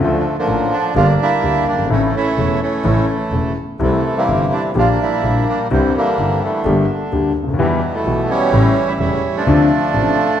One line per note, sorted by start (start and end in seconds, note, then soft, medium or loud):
0.00 0.20 D2 medium
0.00 0.20 D3 medium
0.00 0.37 D3 medium
0.00 0.20 F3 medium
0.00 0.37 F3 soft
0.00 0.20 A3 medium
0.00 0.34 A3 medium
0.00 0.20 F4 medium
0.38 0.92 D3 medium
0.38 0.92 F3 medium
0.38 0.74 A#3 medium
0.47 0.67 A1 medium
0.47 0.67 A2 medium
0.47 0.67 D3 soft
0.47 0.67 F3 soft
0.47 0.67 A3 soft
0.47 0.67 F4 medium
0.73 0.94 D4 medium
0.95 1.15 G1 loud
0.95 1.15 G1 medium
0.95 1.15 G2 medium
0.95 1.15 D3 medium
0.95 1.15 G3 medium
0.95 1.20 A#3 medium
0.95 1.15 A#3 medium
0.95 1.67 D4 medium
0.95 1.07 F4 medium
0.95 1.15 G4 medium
1.21 1.87 G3 medium
1.21 1.87 A#3 medium
1.21 1.65 E4 medium
1.42 1.62 D2 soft
1.42 1.62 D3 soft
1.42 1.62 G3 soft
1.42 1.62 A#3 soft
1.42 1.62 G4 soft
1.66 1.89 G1 soft
1.66 1.89 D4 medium
1.73 1.78 F#1 soft
1.78 1.84 G1 medium
1.84 1.90 G#1 medium
1.90 2.09 A1 medium
1.90 2.10 A2 medium
1.90 2.09 C#3 medium
1.90 2.09 E3 medium
1.90 2.60 E3 medium
1.90 2.09 A3 medium
1.90 2.15 A3 soft
1.90 2.02 C#4 medium
1.90 2.10 E4 medium
2.16 2.61 A3 medium
2.16 2.61 C#4 medium
2.16 2.59 E4 medium
2.37 2.57 E1 medium
2.37 2.57 E2 soft
2.37 2.57 C#3 soft
2.37 2.57 E3 soft
2.37 2.57 A3 soft
2.37 2.57 E4 soft
2.62 3.52 E3 medium
2.62 3.53 A3 medium
2.62 3.06 C#4 medium
2.84 3.04 A1 medium
2.84 3.04 A2 medium
2.84 3.04 C#3 medium
2.84 3.04 E3 medium
2.84 3.04 A3 medium
2.84 3.04 E4 medium
3.32 3.52 E1 medium
3.32 3.52 E1 soft
3.32 3.52 E2 soft
3.32 3.52 C#3 soft
3.32 3.52 E3 soft
3.32 3.52 A3 soft
3.32 3.52 E4 soft
3.79 4.00 C2 medium
3.79 4.00 C3 medium
3.79 4.72 C3 medium
3.79 4.00 E3 medium
3.79 4.16 E3 soft
3.79 4.00 G3 medium
3.79 4.18 A3 medium
3.79 4.00 E4 medium
4.17 4.72 E3 soft
4.17 4.72 G3 medium
4.17 4.53 A#3 medium
4.27 4.47 G1 soft
4.27 4.48 G1 medium
4.27 4.48 G2 soft
4.27 4.48 C3 soft
4.27 4.48 E3 soft
4.27 4.48 G3 soft
4.27 4.48 E4 medium
4.53 4.63 D4 medium
4.75 4.95 A#1 medium
4.75 4.95 A#2 medium
4.75 4.95 D3 medium
4.75 4.95 G3 medium
4.75 4.95 A#3 medium
4.75 5.00 A#3 medium
4.75 5.47 D4 medium
4.75 4.88 F4 medium
4.75 4.95 G4 medium
5.01 5.68 G3 medium
5.01 5.68 A#3 medium
5.01 5.44 E4 medium
5.23 5.43 A#1 medium
5.23 5.43 A#1 soft
5.23 5.43 A#2 soft
5.23 5.43 D3 soft
5.23 5.43 G3 soft
5.23 5.43 A#3 soft
5.23 5.43 G4 soft
5.49 5.59 D4 medium
5.71 5.90 C2 medium
5.71 5.90 C3 medium
5.71 5.90 D3 medium
5.71 5.97 E3 soft
5.71 5.90 G3 medium
5.71 6.62 G3 medium
5.71 5.90 C4 medium
5.71 5.93 C4 medium
5.71 5.91 E4 medium
5.97 6.42 D3 medium
5.97 6.62 E3 medium
5.97 6.39 A#3 medium
6.18 6.37 G1 medium
6.18 6.38 G1 medium
6.18 6.38 G2 medium
6.18 6.38 D3 soft
6.18 6.38 G3 soft
6.18 6.38 C4 soft
6.18 6.38 E4 soft
6.44 7.32 D3 medium
6.44 6.86 A3 medium
6.65 6.84 G1 medium
6.65 6.85 G1 medium
6.65 6.84 G2 medium
6.65 6.84 D3 medium
6.65 6.84 G3 medium
6.65 6.85 A#3 medium
6.65 6.85 G4 medium
7.12 7.31 D2 medium
7.12 7.32 D2 medium
7.12 7.32 D3 soft
7.12 7.32 G3 soft
7.12 7.32 A#3 soft
7.12 7.32 G4 soft
7.36 7.58 D2 soft
7.43 7.48 C#2 soft
7.48 7.53 D2 medium
7.53 7.59 D#2 medium
7.59 7.78 E2 medium
7.59 8.49 B2 soft
7.59 7.78 E3 medium
7.59 7.93 E3 soft
7.59 7.78 G3 medium
7.59 7.96 G3 medium
7.59 7.78 B3 medium
7.59 7.79 G4 medium
7.94 8.29 E3 medium
7.94 8.30 A3 medium
8.05 8.25 B1 medium
8.05 8.25 B1 soft
8.05 8.25 B2 medium
8.05 8.25 E3 soft
8.05 8.25 G3 soft
8.05 8.25 B3 soft
8.05 8.25 G4 medium
8.30 9.20 E3 medium
8.30 8.99 G3 medium
8.30 8.90 C#4 medium
8.53 8.72 A1 medium
8.53 8.72 A2 medium
8.53 8.72 C#3 medium
8.53 8.72 G3 medium
8.53 8.72 A3 medium
8.53 8.72 E4 medium
8.88 8.93 E4 medium
8.99 9.19 E1 medium
8.99 9.19 E1 soft
8.99 9.19 E2 medium
8.99 9.19 C#3 soft
8.99 9.19 G3 soft
8.99 9.44 G3 medium
8.99 9.19 A3 soft
8.99 9.44 C#4 medium
8.99 9.19 E4 soft
8.99 9.36 E4 medium
9.37 10.40 F3 medium
9.37 10.40 A3 medium
9.37 10.40 D4 medium
9.47 9.66 D2 medium
9.47 9.66 C3 medium
9.47 9.66 D3 medium
9.47 9.66 F3 medium
9.47 9.66 A3 medium
9.47 9.67 D4 medium
9.94 10.14 A1 medium
9.94 10.14 A1 soft
9.94 10.14 A2 medium
9.94 10.13 C3 soft
9.94 10.14 F3 soft
9.94 10.14 A3 soft
9.94 10.14 D4 soft